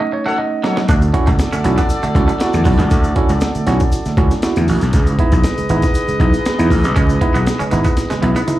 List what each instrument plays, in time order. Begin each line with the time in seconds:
Already playing: tine electric piano A3 C#4 D#4 D#5
0.00 clean electric guitar A3
0.12 tine electric piano C#5, muted clean electric guitar stroke
0.26 clean electric guitar A3, horn section F#4 A4 C#5, tine electric piano F#5
0.38 tine electric piano D#5, muted clean electric guitar stroke
0.64 clean electric guitar F#3, horn section F#4 A4 C#5, snare
0.77 clean electric guitar F#3, snare
0.88 slap bass D2, tine electric piano D3 A3, clean electric guitar D4, horn section F#4 A4 D5, kick, closed hi-hat, shaker
1.02 tine electric piano E4 F#4, closed hi-hat, shaker
1.13 tine electric piano C#4 E4 F#4, muted clean electric guitar stroke, kick, closed hi-hat
1.27 slap bass C#2, clean electric guitar A3, kick, closed hi-hat, shaker
1.39 tine electric piano E4 F#4, snare, closed hi-hat, shaker
1.53 tine electric piano D3 A3, clean electric guitar C#4, muted slap bass stroke, closed hi-hat, shaker
1.64 slap bass B1, tine electric piano C#4 E4 F#4, muted clean electric guitar stroke, closed hi-hat, shaker
1.78 clean electric guitar B3, kick, snare, closed hi-hat, shaker
1.90 tine electric piano E4 F#4, closed hi-hat, shaker
2.03 tine electric piano D3 A3, clean electric guitar A3, muted slap bass stroke, closed hi-hat, shaker
2.15 slap bass C#2, tine electric piano C#4 E4 F#4, muted clean electric guitar stroke, kick, snare, closed hi-hat
2.28 clean electric guitar A3, closed hi-hat, shaker
2.40 tine electric piano E4 F#4, muted clean electric guitar stroke, snare, closed hi-hat, shaker
2.54 slap bass E2, tine electric piano D3 A3, closed hi-hat, shaker
2.65 slap bass B1, clean electric guitar F#3, tine electric piano E4 F#4, kick, open hi-hat, shaker
2.79 slap bass C#2, clean electric guitar E3, snare, closed hi-hat, shaker
2.91 slap bass D2, tine electric piano D3 A3, kick, closed hi-hat, shaker
3.04 tine electric piano E4 F#4, closed hi-hat, shaker
3.16 tine electric piano C#4 E4 F#4, kick, closed hi-hat
3.29 slap bass C#2, closed hi-hat, shaker
3.41 tine electric piano E4 F#4, snare, closed hi-hat, shaker
3.55 tine electric piano D3 A3, muted slap bass stroke, closed hi-hat, shaker
3.67 slap bass B1, tine electric piano C#4 E4 F#4, snare, closed hi-hat, shaker
3.80 kick, closed hi-hat, shaker
3.92 tine electric piano E4 F#4, closed hi-hat, shaker
4.05 tine electric piano D3 A3, muted slap bass stroke, snare, closed hi-hat, shaker
4.17 slap bass C#2, tine electric piano C#4 E4 F#4, kick, closed hi-hat
4.31 snare, closed hi-hat, shaker
4.42 tine electric piano E4 F#4, snare, closed hi-hat, shaker
4.56 slap bass E2, tine electric piano D3 A3, closed hi-hat, shaker
4.68 slap bass A1, tine electric piano E4 F#4, open hi-hat, shaker
4.81 slap bass B1, snare, closed hi-hat, shaker
4.93 slap bass C#2, tine electric piano C#3 G#3, horn section G#4 B4 D#5, kick, closed hi-hat, shaker
5.07 tine electric piano D#4 E4, closed hi-hat, shaker
5.19 tine electric piano B3 D#4 E4, kick, closed hi-hat
5.32 slap bass B1, kick, closed hi-hat, shaker
5.43 tine electric piano D#4 E4, snare, closed hi-hat, shaker
5.58 tine electric piano C#3 G#3, muted slap bass stroke, closed hi-hat, shaker
5.69 slap bass G#1, tine electric piano B3 D#4 E4, closed hi-hat, shaker
5.82 kick, snare, closed hi-hat, shaker
5.94 tine electric piano D#4 E4, closed hi-hat, shaker
6.08 tine electric piano C#3 G#3, muted slap bass stroke, closed hi-hat, shaker
6.20 slap bass B1, tine electric piano B3 D#4 E4, kick, snare, closed hi-hat
6.34 closed hi-hat, shaker
6.45 snare, closed hi-hat, shaker
6.58 slap bass E2, tine electric piano B3 D#4 E4, closed hi-hat, shaker
6.70 slap bass A1, kick, open hi-hat, shaker
6.84 slap bass B1, tine electric piano C#3 G#3, snare, closed hi-hat, shaker
6.96 slap bass C#2, tine electric piano C#3 G#3, clean electric guitar C#4, kick, closed hi-hat, shaker
7.09 tine electric piano D#4 E4, closed hi-hat, shaker
7.21 tine electric piano B3 D#4 E4, muted clean electric guitar stroke, kick, closed hi-hat
7.34 slap bass B1, clean electric guitar B3, closed hi-hat, shaker
7.46 tine electric piano D#4 E4, snare, closed hi-hat, shaker
7.59 tine electric piano C#3 G#3, clean electric guitar C#4, muted slap bass stroke, closed hi-hat, shaker
7.71 slap bass G#1, tine electric piano B3 D#4 E4, muted clean electric guitar stroke, snare, closed hi-hat, shaker
7.84 clean electric guitar B3, kick, closed hi-hat, shaker
7.97 tine electric piano D#4 E4, snare, closed hi-hat, shaker
8.10 tine electric piano C#3 G#3, clean electric guitar G#3, muted slap bass stroke, snare, closed hi-hat, shaker
8.22 slap bass B1, tine electric piano B3 D#4 E4, muted clean electric guitar stroke, closed hi-hat, high tom
8.36 clean electric guitar B3, closed hi-hat, high tom, shaker
8.47 tine electric piano D#4 E4, muted clean electric guitar stroke, closed hi-hat, mid tom, shaker